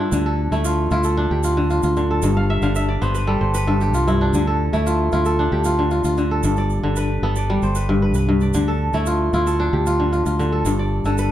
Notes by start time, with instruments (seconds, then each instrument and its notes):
Already playing: kora G2 D3 G3 E4 F4 G4 A4 B4 C5 D5
0.00 kora D4
0.12 fingered electric bass D2, kora D3, shaker
0.26 kora A4
0.51 fingered electric bass D2, kora A3 E4, shaker
0.65 kora F4, shaker
0.91 fingered electric bass D2, kora E4 F4, shaker
1.03 kora A4, shaker
1.17 kora D4
1.31 fingered electric bass D2, kora G4
1.43 kora F4, shaker
1.57 kora D3
1.70 kora F4, shaker
1.83 fingered electric bass D2, kora F4, shaker
1.96 kora D3, shaker
2.11 kora A4
2.22 fingered electric bass G1, kora G2, shaker
2.37 kora F5
2.50 kora E5
2.62 fingered electric bass G1, kora D3 F5, shaker
2.75 kora E5, shaker
2.89 kora D5
3.02 fingered electric bass G1, kora B3 C5, shaker
3.15 kora B4, shaker
3.27 kora G3 A4
3.41 fingered electric bass G1, kora C5
3.54 kora B4, shaker
3.67 kora G2 A4
3.81 kora G4, shaker
3.94 fingered electric bass C2, kora F4, shaker
4.07 kora G2 E4, shaker
4.21 kora D4
4.33 fingered electric bass D2, kora D3, shaker
4.47 kora A4
4.73 fingered electric bass D2, kora A3 E4, shaker
4.87 kora F4, shaker
5.12 fingered electric bass D2, kora E4 F4, shaker
5.25 kora A4, shaker
5.39 kora D4
5.52 fingered electric bass D2, kora G4
5.64 kora F4, shaker
5.79 kora D3
5.91 kora F4, shaker
6.04 fingered electric bass D2, kora F4, shaker
6.17 kora D3, shaker
6.31 kora A4
6.43 fingered electric bass G1, kora G2, shaker
6.56 kora D5, shaker
6.70 shaker
6.83 fingered electric bass G1, kora D3
6.96 kora B4, shaker
7.22 fingered electric bass G1, kora B3 A4
7.36 kora D5, shaker
7.50 kora G3
7.62 fingered electric bass G1, kora C5, shaker
7.75 kora B4, shaker
7.89 kora G2
8.02 kora B4
8.14 fingered electric bass C2, kora B4, shaker
8.29 kora G2
8.40 kora D5, shaker
8.54 fingered electric bass D2, kora D3, shaker
8.68 kora A4
8.93 fingered electric bass D2, kora A3 E4, shaker
9.06 kora F4, shaker
9.33 fingered electric bass D2, kora E4 F4, shaker
9.47 kora A4, shaker
9.60 kora D4
9.73 fingered electric bass D2, kora G4
9.86 kora F4, shaker
10.00 kora D3
10.13 kora F4, shaker
10.26 fingered electric bass D2, kora F4, shaker
10.39 kora D3, shaker
10.52 kora A4
10.65 fingered electric bass G1, kora G2, shaker
10.79 kora D5
11.04 fingered electric bass G1, kora D3 A4, shaker
11.18 kora B4, shaker